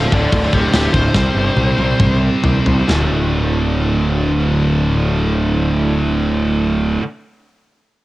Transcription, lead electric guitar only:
Already playing: C5 F5
0.14 A4 D5
0.32 A4 D5
0.53 G4 C5
0.72 G4 C5
0.93 C5

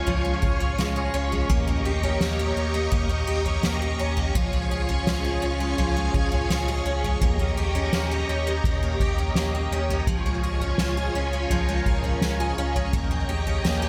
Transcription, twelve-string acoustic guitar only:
Already playing: G#3 C#4 G#4
0.07 F3
0.25 G#3
0.42 G#4
0.60 C#4
0.78 G#3
0.96 G#4
1.14 C#4
1.32 G#3
1.49 A#3
1.67 A#3
1.85 G4
2.03 C#4
2.21 A#3
2.39 G4
2.57 C#4
2.74 A#3
2.92 A#3
3.09 A#3
3.27 G4
3.46 C#4
3.63 A#3
3.82 G4
3.99 C#4
4.17 A#3
4.35 F3
4.53 G#3
4.71 G#4
4.89 C#4
5.07 G#3
5.25 G#4
5.42 C#4
5.60 G#3
5.78 F3
5.97 G#3
6.14 G#4
6.32 C#4
6.50 G#3
6.68 G#4
6.86 C#4
7.04 G#3
7.22 A#3
7.39 A#3
7.57 G4
7.75 C#4
7.93 A#3
8.11 G4
8.29 C#4
8.47 A#3
8.65 A#3
8.83 A#3
9.01 G4
9.18 C#4
9.36 A#3
9.55 G4
9.72 C#4
9.90 A#3
10.07 F3
10.26 G#3
10.44 G#4
10.61 C#4
10.80 G#3
10.97 G#4
11.15 C#4
11.33 G#3
11.51 F3
11.69 G#3
11.86 G#4
12.04 C#4
12.22 G#3
12.40 G#4
12.58 C#4
12.76 G#3
12.93 A#3
13.11 A#3
13.29 G4
13.47 C#4
13.65 A#3
13.82 G4

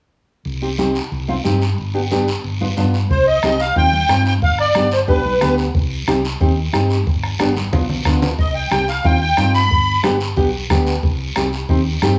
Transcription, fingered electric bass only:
0.45 C2
1.12 C2
1.45 G2
1.78 G1
2.44 G1
2.78 G2
3.10 C2
3.43 C2
3.76 D#2
4.09 G2
4.42 G1
4.75 G1
5.08 B1
5.42 D2
5.75 C2
6.08 C2
6.41 D#2
6.74 G2
7.07 G1
7.40 G1
7.73 B1
8.05 D2
8.38 C2
8.71 C2
9.05 D#2
9.38 G2
9.70 G1
10.04 G1
10.37 B1
10.70 D2
11.03 C2
11.37 C2
11.69 D#2
12.02 G2

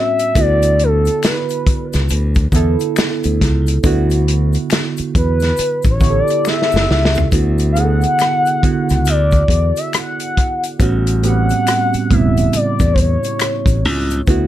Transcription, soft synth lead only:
Already playing: E5
0.40 D5
0.83 A4
1.26 B4
5.17 B4
5.90 C#5
6.19 D5
6.47 E5
7.72 F5
7.79 F#5
9.09 D5
9.78 E5
9.96 F#5
11.26 F#5
12.13 E5
12.56 D5
12.93 C5
12.99 C#5

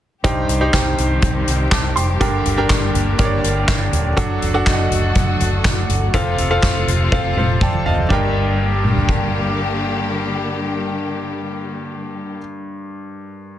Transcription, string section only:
0.24 D#3 G3 C4 G4
2.21 D3 A#3
4.18 F#3 A3 F#4
6.13 C3 F3 F4
8.10 D3 G3 A#3 G4

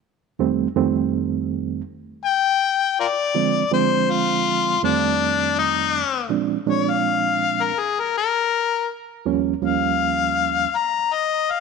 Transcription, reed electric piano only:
0.39 F2 D#3 G3 A3 C4
0.76 F2 D#3 G3 A3 C4
3.35 D3 F3 G#3 C4
3.72 D3 F3 G#3 C4
4.83 F2 D#3 G3 A3 C4
6.29 A#2 F3 G#3 C4 D4
6.66 A#2 F3 G#3 C4 D4
9.26 D#2 F3 G3 A#3 C#4
9.62 D#2 F3 G3 A#3 C#4

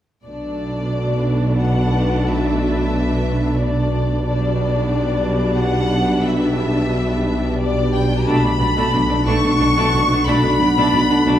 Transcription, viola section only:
0.26 A3 D4
4.26 G3 D4
8.27 A3 D4
8.43 A3 D4
8.60 A3 D4
8.76 A3 D4
8.93 A3 D4
9.09 A3 D4
9.26 A3 D4
9.44 A3 D4
9.60 A3 D4
9.77 A3 D4
9.93 A3 D4
10.10 A3 D4
10.27 A3 D4
10.44 A3 D4
10.61 A3 D4
10.77 A3 D4
10.93 A3 D4
11.10 A3 D4
11.26 A3 D4

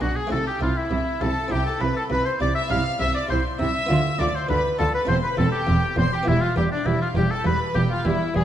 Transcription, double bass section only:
0.02 B1
0.32 C2
0.62 C2
0.91 C2
1.22 C2
1.51 C2
1.81 C2
2.10 C2
2.41 C2
2.71 C2
3.01 C2
3.31 C2
3.60 C2
3.90 D2
4.20 D2
4.50 D2
4.80 D2
5.09 E1
5.39 E1
5.68 E1
5.98 E1
6.28 E1
6.57 E1
6.87 E1
7.16 E1
7.46 E1
7.76 E1
8.05 E1
8.35 E1

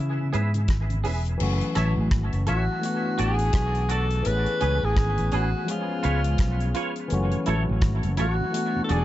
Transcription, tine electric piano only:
Already playing: E3 B3 C#4 G#4
1.37 E3 F#3 A3
1.41 C#4 F#4
2.79 E3 A3 B3
2.84 D4 F#4
4.22 E3 A3 B3
4.27 C#4 G#4
5.64 F3 G#3 B3
5.69 C#4 G#4
7.08 E3 F#3 A3
7.13 C#4 F#4
8.51 E3 A3 B3
8.55 D4 F#4

